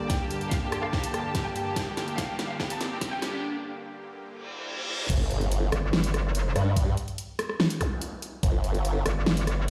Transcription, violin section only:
0, 0, Header, 1, 2, 480
1, 0, Start_track
1, 0, Key_signature, -2, "minor"
1, 0, Tempo, 416667
1, 113, Time_signature, 4, 2, 24, 8
1, 11174, End_track
2, 0, Start_track
2, 0, Title_t, "Violin section"
2, 0, Program_c, 0, 48
2, 113, Note_on_c, 0, 79, 95
2, 216, Note_off_c, 0, 79, 0
2, 235, Note_on_c, 0, 67, 61
2, 336, Note_off_c, 0, 67, 0
2, 355, Note_on_c, 0, 67, 64
2, 457, Note_off_c, 0, 67, 0
2, 477, Note_on_c, 0, 67, 63
2, 577, Note_off_c, 0, 67, 0
2, 596, Note_on_c, 0, 77, 92
2, 698, Note_off_c, 0, 77, 0
2, 715, Note_on_c, 0, 67, 61
2, 816, Note_off_c, 0, 67, 0
2, 835, Note_on_c, 0, 67, 62
2, 937, Note_off_c, 0, 67, 0
2, 955, Note_on_c, 0, 77, 89
2, 1056, Note_off_c, 0, 77, 0
2, 1075, Note_on_c, 0, 67, 63
2, 1177, Note_off_c, 0, 67, 0
2, 1197, Note_on_c, 0, 81, 92
2, 1297, Note_off_c, 0, 81, 0
2, 1315, Note_on_c, 0, 67, 62
2, 1418, Note_off_c, 0, 67, 0
2, 1435, Note_on_c, 0, 67, 64
2, 1536, Note_off_c, 0, 67, 0
2, 1554, Note_on_c, 0, 67, 59
2, 1657, Note_off_c, 0, 67, 0
2, 1675, Note_on_c, 0, 79, 94
2, 1776, Note_off_c, 0, 79, 0
2, 1796, Note_on_c, 0, 67, 61
2, 1898, Note_off_c, 0, 67, 0
2, 1917, Note_on_c, 0, 67, 62
2, 2017, Note_off_c, 0, 67, 0
2, 2035, Note_on_c, 0, 79, 98
2, 2137, Note_off_c, 0, 79, 0
2, 2156, Note_on_c, 0, 67, 64
2, 2256, Note_off_c, 0, 67, 0
2, 2275, Note_on_c, 0, 67, 65
2, 2377, Note_off_c, 0, 67, 0
2, 2396, Note_on_c, 0, 67, 64
2, 2496, Note_off_c, 0, 67, 0
2, 2513, Note_on_c, 0, 77, 93
2, 2616, Note_off_c, 0, 77, 0
2, 2635, Note_on_c, 0, 67, 65
2, 2736, Note_off_c, 0, 67, 0
2, 2753, Note_on_c, 0, 67, 61
2, 2856, Note_off_c, 0, 67, 0
2, 2875, Note_on_c, 0, 77, 89
2, 2976, Note_off_c, 0, 77, 0
2, 2994, Note_on_c, 0, 67, 65
2, 3097, Note_off_c, 0, 67, 0
2, 3115, Note_on_c, 0, 81, 100
2, 3216, Note_off_c, 0, 81, 0
2, 3233, Note_on_c, 0, 67, 63
2, 3336, Note_off_c, 0, 67, 0
2, 3354, Note_on_c, 0, 67, 65
2, 3456, Note_off_c, 0, 67, 0
2, 3472, Note_on_c, 0, 67, 60
2, 3576, Note_off_c, 0, 67, 0
2, 3594, Note_on_c, 0, 79, 98
2, 3696, Note_off_c, 0, 79, 0
2, 3713, Note_on_c, 0, 67, 64
2, 3816, Note_off_c, 0, 67, 0
2, 3835, Note_on_c, 0, 67, 64
2, 3936, Note_off_c, 0, 67, 0
2, 11174, End_track
0, 0, End_of_file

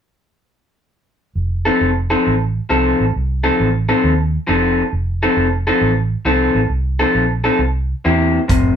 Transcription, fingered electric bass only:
0, 0, Header, 1, 2, 480
1, 0, Start_track
1, 0, Tempo, 445765
1, 1466, Time_signature, 4, 2, 24, 8
1, 9433, End_track
2, 0, Start_track
2, 0, Title_t, "Fingered electric bass"
2, 0, Program_c, 0, 33
2, 1458, Note_on_c, 0, 29, 72
2, 1814, Note_off_c, 0, 29, 0
2, 1948, Note_on_c, 0, 29, 71
2, 2301, Note_off_c, 0, 29, 0
2, 2440, Note_on_c, 0, 33, 63
2, 2788, Note_off_c, 0, 33, 0
2, 2910, Note_on_c, 0, 36, 68
2, 3143, Note_off_c, 0, 36, 0
2, 3231, Note_on_c, 0, 33, 67
2, 3348, Note_off_c, 0, 33, 0
2, 3404, Note_on_c, 0, 36, 71
2, 3751, Note_off_c, 0, 36, 0
2, 3875, Note_on_c, 0, 33, 68
2, 4225, Note_off_c, 0, 33, 0
2, 4348, Note_on_c, 0, 39, 72
2, 4701, Note_off_c, 0, 39, 0
2, 4830, Note_on_c, 0, 29, 68
2, 5182, Note_off_c, 0, 29, 0
2, 5304, Note_on_c, 0, 29, 72
2, 5658, Note_off_c, 0, 29, 0
2, 5778, Note_on_c, 0, 29, 75
2, 6134, Note_off_c, 0, 29, 0
2, 6259, Note_on_c, 0, 33, 73
2, 6615, Note_off_c, 0, 33, 0
2, 6730, Note_on_c, 0, 36, 74
2, 6970, Note_off_c, 0, 36, 0
2, 7049, Note_on_c, 0, 33, 76
2, 7174, Note_off_c, 0, 33, 0
2, 7212, Note_on_c, 0, 36, 71
2, 7570, Note_off_c, 0, 36, 0
2, 7697, Note_on_c, 0, 34, 72
2, 8053, Note_off_c, 0, 34, 0
2, 8171, Note_on_c, 0, 36, 72
2, 8529, Note_off_c, 0, 36, 0
2, 8671, Note_on_c, 0, 40, 65
2, 9022, Note_off_c, 0, 40, 0
2, 9147, Note_on_c, 0, 29, 86
2, 9433, Note_off_c, 0, 29, 0
2, 9433, End_track
0, 0, End_of_file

